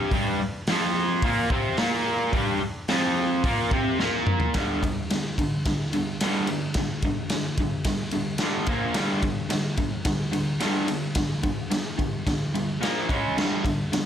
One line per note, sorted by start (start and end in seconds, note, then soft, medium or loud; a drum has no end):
0.00 0.11 G2 medium
0.00 0.12 G3 loud
0.11 0.39 G2 loud
0.11 0.39 G3 loud
0.11 kick loud
0.11 open hi-hat medium
0.41 muted overdriven electric guitar stroke medium
0.67 1.23 F2 loud
0.67 1.23 F3 loud
0.67 snare loud
0.67 open hi-hat medium
1.22 1.50 A#2 loud
1.22 1.51 A#3 loud
1.22 kick loud
1.22 open hi-hat medium
1.50 1.78 C3 loud
1.50 1.78 C4 loud
1.50 kick loud
1.77 2.33 A#2 loud
1.77 2.33 A#3 loud
1.77 snare loud
1.77 open hi-hat medium
2.32 2.60 G2 loud
2.32 2.61 G3 loud
2.32 kick loud
2.32 open hi-hat medium
2.62 muted overdriven electric guitar stroke medium
2.88 3.43 F2 medium
2.88 3.44 F3 loud
2.88 snare loud
2.88 open hi-hat medium
3.44 3.71 A#2 medium
3.44 3.72 A#3 loud
3.44 kick loud
3.44 open hi-hat medium
3.71 3.99 C3 loud
3.71 3.99 C4 loud
3.71 kick loud
3.99 4.54 A#2 loud
3.99 4.55 A#3 loud
3.99 snare medium
4.27 mid tom medium
4.40 floor tom loud
4.54 4.80 G2 medium
4.54 4.81 D3 loud
4.54 4.81 G3 medium
4.54 kick loud
4.54 snare loud
4.54 ride medium
4.82 5.07 G2 medium
4.82 5.07 D3 medium
4.82 kick medium
4.82 ride medium
5.10 5.35 G2 medium
5.10 5.35 D3 medium
5.10 snare loud
5.10 ride medium
5.38 5.63 G2 medium
5.38 5.63 D3 medium
5.38 kick medium
5.38 ride medium
5.65 5.91 G2 medium
5.65 5.91 D3 medium
5.65 kick loud
5.65 snare loud
5.65 ride loud
5.93 6.18 G2 medium
5.93 6.18 D3 medium
5.93 ride medium
6.20 6.47 G2 medium
6.20 6.48 D3 loud
6.20 6.48 G3 loud
6.20 snare loud
6.20 ride loud
6.47 6.73 G2 medium
6.47 6.73 D3 medium
6.47 ride medium
6.74 7.01 G2 medium
6.74 7.02 D3 medium
6.74 kick loud
6.74 snare loud
6.74 ride medium
7.02 7.29 G2 medium
7.02 7.29 D3 medium
7.02 kick medium
7.02 ride medium
7.29 7.56 G2 medium
7.29 7.57 D3 medium
7.29 snare loud
7.29 ride loud
7.57 7.84 G2 medium
7.57 7.84 D3 medium
7.57 kick medium
7.57 ride medium
7.84 8.11 G2 medium
7.84 8.11 D3 medium
7.84 kick loud
7.84 snare loud
7.84 ride loud
8.11 8.38 G2 medium
8.11 8.38 D3 medium
8.11 ride medium
8.38 8.67 G2 medium
8.38 8.67 D3 loud
8.38 8.67 G3 medium
8.38 snare loud
8.38 ride medium
8.66 8.94 A#2 loud
8.66 8.94 F3 loud
8.66 8.95 A#3 loud
8.66 kick loud
8.66 ride medium
8.94 9.22 G2 medium
8.94 9.22 D3 medium
8.94 9.22 G3 loud
8.94 snare loud
8.94 ride loud
9.22 9.48 G2 medium
9.22 9.48 D3 medium
9.22 kick medium
9.22 ride medium
9.50 9.75 G2 medium
9.50 9.76 D3 medium
9.50 snare loud
9.50 ride loud
9.77 10.03 G2 medium
9.77 10.04 D3 medium
9.77 kick medium
9.77 ride medium
10.05 10.31 G2 medium
10.05 10.31 D3 medium
10.05 kick loud
10.05 snare loud
10.05 ride loud
10.32 10.58 G2 medium
10.32 10.58 D3 medium
10.32 ride medium
10.60 10.86 G2 medium
10.60 10.87 D3 medium
10.60 10.88 G3 medium
10.60 snare loud
10.60 ride loud
10.88 11.13 G2 medium
10.88 11.13 D3 loud
10.88 ride medium
11.15 11.41 G2 medium
11.15 11.42 D3 medium
11.15 kick loud
11.15 snare loud
11.15 ride medium
11.43 11.68 G2 medium
11.43 11.68 D3 medium
11.43 kick medium
11.43 ride medium
11.70 11.96 G2 medium
11.70 11.96 D3 medium
11.70 snare loud
11.70 ride medium
11.98 12.23 G2 medium
11.98 12.23 D3 medium
11.98 kick medium
11.98 ride medium
12.26 12.51 G2 medium
12.26 12.52 D3 medium
12.26 kick loud
12.26 snare loud
12.26 ride medium
12.54 12.79 G2 medium
12.54 12.79 D3 medium
12.54 ride medium
12.81 13.07 A#2 medium
12.81 13.07 F3 loud
12.81 13.08 A#3 medium
12.81 snare loud
12.81 ride medium
13.09 13.35 C#3 medium
13.09 13.35 G#3 loud
13.09 13.36 C#4 loud
13.09 kick loud
13.09 ride medium
13.36 13.62 G2 medium
13.36 13.63 D3 medium
13.36 13.63 G3 loud
13.36 snare loud
13.36 crash medium
13.64 13.89 G2 medium
13.64 13.89 D3 medium
13.64 kick medium
13.64 ride medium
13.92 14.06 G2 medium
13.92 14.06 D3 medium
13.92 snare loud
13.92 ride medium